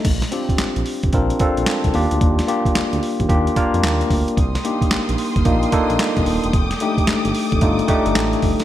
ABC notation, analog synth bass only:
X:1
M:4/4
L:1/16
Q:"Swing 16ths" 1/4=111
K:Bb
V:1 name="Analog synth bass" clef=bass
B,,,2 z B,,, B,,, B,,, z G,,, B,,,2 z B,,, z C,, E,, D,, | E,,2 z D,, D,, D,, z E,, E,,2 z F,, E,,2 D,, z | C,,2 z B,,, B,,, B,,, z G,,, B,,,2 z B,,, z C,, E,,, =E,,, | F,,,2 z G,,, G,,, G,,, z F,,, G,,,2 z G,,, A,,,2 G,,, z |]